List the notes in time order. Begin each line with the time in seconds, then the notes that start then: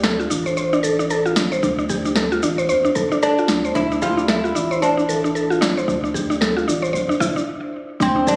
Already playing: D2
0.04 A4, snare, shaker
0.20 F4, shaker
0.30 A1 D4, udu, shaker
0.46 C5, udu, shaker
0.57 C5, shaker
0.73 D4, shaker
0.83 A1 A4, shaker
0.99 D4, shaker
1.10 A4, shaker
1.26 F4, shaker
1.36 D4, snare, shaker
1.52 C5, shaker
1.63 D2 D4, kick, shaker
1.79 D4, shaker
1.89 G4, kick, udu, shaker
2.05 D4, shaker
2.16 A4, snare, shaker
2.32 F4, shaker
2.42 A1 D4, udu, shaker
2.57 C5, udu, shaker
2.69 F2 C5, shaker
2.85 D4, shaker
2.95 A4, kick, shaker
3.12 D4, shaker
3.23 D4 A4, shaker
3.38 F4, shaker
3.48 D2 D4, snare, shaker
3.65 C5, shaker
3.75 D2 D4 E4, kick, shaker
3.92 D4, shaker
4.02 F4 G4, kick, shaker
4.17 D4, shaker
4.28 E4 A4, snare, shaker
4.44 F4, shaker
4.54 A1 D4, udu, shaker
4.70 C5, udu, shaker
4.82 D4 C5, shaker
4.97 D4, shaker
5.08 A1 A4, shaker
5.24 D4, shaker
5.35 A4, shaker
5.50 F4, shaker
5.61 D4, snare, shaker
5.77 C5, shaker
5.88 D2 D4, kick, shaker
6.04 D4, shaker
6.14 G4, kick, udu, shaker
6.30 D4, shaker
6.41 A4, snare, shaker
6.57 F4, shaker
6.68 A1 D4, udu, shaker
6.82 C5, udu, shaker
6.93 F2 C5, kick, shaker
7.09 D4, shaker
7.20 E4, kick, shaker
7.36 D4, shaker
8.00 D2 C4 D4, kick, shaker
8.16 D4
8.27 D4 G4, kick, shaker